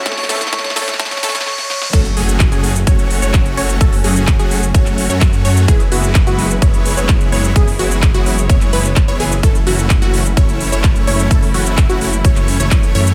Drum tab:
CC |--------------------------------|x-------------------------------|--------------------------------|--------------------------------|
HH |x-o-o-x-x-x-o-x-x-x-o-x---------|x-x-o-x-x-x-o-x-x-x-o-x-x-x-o-x-|x-o-o-x-x-x-o-x-x-x-o-x-x-x-o-x-|x-x-o-x-x-x-o-x-x-x-o-x-x-x-o-x-|
SH |x---x-x-x---x-x-x---x-x---------|x-x---x-x-x---x-x-x---x-x-x---x-|x-x---x-x-x---x-x-x---x-x-x---x-|x-x---x-x-x---x-x-x---x-x-x---x-|
CP |--------------------------------|--------x---------------x-------|--------x---------x-----x-------|--------x---------------x-------|
SD |ooooooooooooooooooooooooo-o-o-o-|--------------------------------|--------------------------------|--------------------------------|
BD |o-------o-------o---------------|o-------o-------o-------o-------|o-------o-------o-------o-------|o-------o-------o-------o-------|

CC |--------------------------------|--------------------------------|--------------------------------|
HH |x-o-o-x-x-x-o-x-x-x-o-x-x-x-o-x-|x-x-o-x-x-x-o-x-x-x-o-x-x-x-o-x-|x-o-o-x-x-x-o-x-x-x-o-x-x-x-o-x-|
SH |x-x---x-x-x---x-x-x---x-x-x---x-|x-x---x-x-x---x-x-x---x-x-x---x-|x-x---x-x-x---x-x-x---x-x-x---x-|
CP |--------x---------x-----x-------|--------x---------------x-------|--------x---------x-----x-------|
SD |--------------------------------|--------------------------------|--------------------------------|
BD |o-------o-------o-------o-------|o-------o-------o-------o-------|o-------o-------o-------o-------|